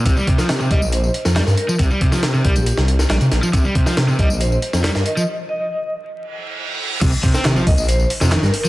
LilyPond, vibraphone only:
\new Staff \with { instrumentName = "Vibraphone" } { \time 4/4 \key c \minor \tempo 4 = 138 r4. ees''8 c''8 r8. bes'16 bes'16 r16 | r4. g'8. r4. r16 | r4. ees''8 c''8 r8. bes'16 ees''16 ees''16 | r8 ees''4 r2 r8 |
r4. ees''8 c''8 r8. bes'16 bes'16 r16 | }